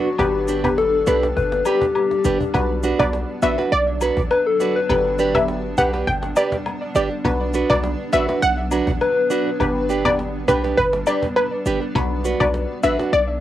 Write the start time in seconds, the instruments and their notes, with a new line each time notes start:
Already playing: ambient pad F#3 B3 D4, soft synth lead F#4
0.06 cajon slap
0.18 808-style bass G1, ambient pad G3, synth stab B3 D4 G4 B4, soft synth lead G4, cajon bass, high woodblock
0.48 nylon-string guitar D4 G4 B4, cajon slap, cabasa
0.64 synth stab B3 D4 G4 B4, cajon bass, high woodblock
0.78 soft synth lead A4, cajon slap
0.94 cajon slap
1.07 808-style bass B1, synth stab B3 D4 G4 B4, nylon-string guitar D4 G4 B4, cajon slap, cabasa
1.23 cajon slap
1.37 808-style bass G1, soft synth lead B4, cajon bass
1.52 cajon slap
1.65 nylon-string guitar D4 G4 B4, soft synth lead G4, cajon slap, cabasa, high woodblock
1.81 cajon bass, cajon slap
1.95 soft synth lead G4, cajon slap, high woodblock
2.11 cajon slap
2.25 808-style bass G1, nylon-string guitar D4 G4 B4, cajon bass, cabasa
2.40 muted nylon-string guitar stroke, cajon bass
2.54 808-style bass B1, ambient pad F#3 B3 D4, synth stab B3 D4 F#4 B4, cajon bass, high woodblock
2.70 cajon slap
2.83 nylon-string guitar D4 F#4 B4, cajon slap, cabasa
2.99 808-style bass B1, synth stab B3 D4 F#4 B4, synth pluck D5, cajon bass, high woodblock
3.13 cajon slap
3.29 cajon slap
3.42 808-style bass A1, synth stab B3 D4 F#4 B4, nylon-string guitar D4 F#4 B4, synth pluck E5, cabasa
3.58 nylon-string guitar D4 F#4 B4, cajon slap
3.72 808-style bass B1, synth pluck D5
3.87 cajon slap
4.01 nylon-string guitar D4 F#4 B4, cajon slap, cabasa, high woodblock
4.17 808-style bass A1, cajon bass
4.30 soft synth lead B4, cajon slap, high woodblock
4.46 soft synth lead A4, cajon slap
4.60 nylon-string guitar D4 F#4 B4, cajon slap, cabasa
4.76 soft synth lead B4, cajon slap
4.89 808-style bass G1, ambient pad G3, synth stab B3 D4 G4 B4, cajon bass, high woodblock
5.05 cajon slap
5.19 nylon-string guitar D4 G4 B4, cajon slap, cabasa
5.34 synth stab B3 D4 G4 B4, synth pluck E5, cajon bass, high woodblock
5.48 cajon slap
5.64 cajon slap
5.78 808-style bass B1, synth stab B3 D4 G4 B4, nylon-string guitar D4 G4 B4, synth pluck F#5, cajon bass, cabasa
5.93 nylon-string guitar D4 G4 B4, cajon slap
6.07 808-style bass G1, synth pluck G5, cajon bass
6.23 cajon slap
6.36 nylon-string guitar D4 G4 B4, synth pluck D5, cajon slap, cabasa, high woodblock
6.52 cajon bass, cajon slap
6.66 cajon slap, high woodblock
6.82 cajon slap
6.95 808-style bass G1, nylon-string guitar D4 G4 B4, synth pluck D5, cabasa
7.11 muted nylon-string guitar stroke, cajon slap
7.24 808-style bass B1, ambient pad F#3, synth stab B3 D4 F#4 B4, cajon bass, high woodblock
7.41 cajon slap
7.54 nylon-string guitar D4 F#4 B4, cajon slap, cabasa
7.69 808-style bass B1, synth stab B3 D4 F#4 B4, synth pluck D5, cajon bass, high woodblock
7.84 cajon slap
7.99 cajon slap
8.13 808-style bass A1, synth stab B3 D4 F#4 B4, nylon-string guitar D4 F#4 B4, synth pluck E5, cajon slap, cabasa
8.28 nylon-string guitar D4 F#4 B4, cajon slap
8.42 808-style bass B1, synth pluck F#5, cajon slap
8.58 cajon slap
8.71 nylon-string guitar D4 F#4 B4, cabasa, high woodblock
8.87 808-style bass A1, cajon bass
9.01 soft synth lead B4, cajon slap, high woodblock
9.17 cajon slap
9.30 nylon-string guitar D4 F#4 B4, cajon slap, cabasa
9.47 cajon slap
9.60 808-style bass G1, ambient pad G3 D4, synth stab B3 D4 G4 B4, cajon bass, high woodblock
9.89 nylon-string guitar D4 G4 B4, cabasa
10.05 synth stab B3 D4 G4 B4, synth pluck D5, cajon bass, high woodblock
10.19 cajon slap
10.35 cajon slap
10.48 808-style bass B1, synth stab B3 D4 G4 B4, nylon-string guitar D4 G4 B4, synth pluck B4, cajon bass, cajon slap, cabasa
10.64 nylon-string guitar D4 G4 B4, cajon slap
10.78 808-style bass G1, synth pluck B4, cajon bass
10.93 cajon slap
11.07 nylon-string guitar D4 G4 B4, synth pluck D5, cabasa, high woodblock
11.22 cajon bass, cajon slap
11.36 synth pluck B4, cajon slap, high woodblock
11.52 cajon slap
11.66 808-style bass G1, nylon-string guitar D4 G4 B4, cajon slap, cabasa
11.81 muted nylon-string guitar stroke, cajon slap
11.95 808-style bass B1, ambient pad F#3 D4, synth stab B3 D4 F#4 B4, cajon bass, high woodblock
12.11 cajon slap
12.24 nylon-string guitar D4 F#4 B4, cajon slap, cabasa
12.40 808-style bass B1, synth stab B3 D4 F#4 B4, synth pluck D5, cajon bass, high woodblock
12.54 cajon slap
12.70 cajon slap
12.83 808-style bass A1, synth stab B3 D4 F#4 B4, nylon-string guitar D4 F#4 B4, synth pluck E5, cabasa
12.99 nylon-string guitar D4 F#4 B4, cajon slap
13.13 808-style bass B1, synth pluck D5, cajon slap
13.28 cajon slap